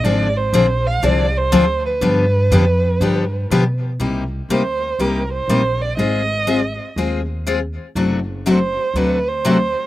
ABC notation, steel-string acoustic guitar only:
X:1
M:4/4
L:1/8
Q:"Swing" 1/4=121
K:Cm
V:1 name="Steel-string acoustic guitar"
[D,F,CDA] z [D,F,CDA] z [D,F,CDA] z [D,F,CDA] z | [D,F,=B,DG] z [D,F,B,DG] z [D,F,B,DG] z [D,F,B,DG] z | [C,G,B,EG] z [C,G,B,EG] z [C,G,B,EG] z [C,G,B,EG] z | [A,CFA] z [A,CFA] z [A,CFA] z [A,CFA] z |
[C,^F,=A,D^F] z [C,F,A,DF] z [C,F,A,DF] z [C,F,A,DF] z |]